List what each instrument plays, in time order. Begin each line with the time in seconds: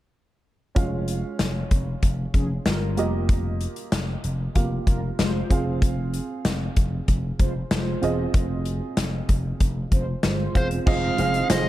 0.75 slap bass F1, grand piano G#3 C#4 F4 F5, kick, closed hi-hat
1.08 closed hi-hat
1.39 slap bass F1, snare, closed hi-hat
1.71 slap bass F1, kick, closed hi-hat
2.03 slap bass F1, kick, closed hi-hat
2.34 slap bass F1, analog polysynth F3 C#4 G#4, kick, closed hi-hat
2.66 slap bass G1, analog polysynth G3 F4 A#4, snare, closed hi-hat
2.97 slap bass F1, grand piano A#3 F4 G4 D#5, closed hi-hat
3.29 kick, closed hi-hat
3.61 closed hi-hat
3.76 closed hi-hat
3.92 slap bass F1, snare, closed hi-hat
4.24 slap bass F1, closed hi-hat
4.55 slap bass F1, grand piano A#3 F4 G4 F5, kick, closed hi-hat
4.87 slap bass F1, analog polysynth G3 F4 A#4, kick, closed hi-hat
5.19 slap bass F1, analog polysynth G#3 F4 C5, snare, closed hi-hat
5.50 slap bass F1, grand piano C4 F4 G#4 F5, kick, closed hi-hat
5.82 kick, closed hi-hat
6.14 closed hi-hat
6.45 slap bass F1, snare, closed hi-hat
6.76 slap bass F1, kick, closed hi-hat
7.08 slap bass F1, kick, closed hi-hat
7.39 slap bass F1, analog polysynth G#3 F4 C5, kick, closed hi-hat
7.71 slap bass F1, analog polysynth G#3 F4 C5, snare, closed hi-hat
8.01 slap bass E1, grand piano C4 F4 G#4 D#5, closed hi-hat
8.34 slap bass F1, kick, closed hi-hat
8.65 closed hi-hat
8.97 slap bass F1, snare, closed hi-hat
9.29 slap bass F1, kick, closed hi-hat
9.60 slap bass F1, kick, closed hi-hat
9.92 slap bass F1, analog polysynth G#3 F4 C5, kick, closed hi-hat
10.23 slap bass G1, analog polysynth G#3 F4 C5, snare, closed hi-hat
10.54 slap bass E1, grand piano C4 F4 G#4 F5, lead electric guitar C5, kick, closed hi-hat
10.71 closed hi-hat
10.86 slap bass F1, string machine D#3 F3 G#3 D#4, grand piano C4 F4 G#4 D#5, lead electric guitar F5, kick, crash
11.18 slap bass F1, grand piano C4 F4 G#4 F5, closed hi-hat
11.34 closed hi-hat
11.49 slap bass F1, grand piano C4 F4 G#4 C5, lead electric guitar D#5, snare, closed hi-hat, tambourine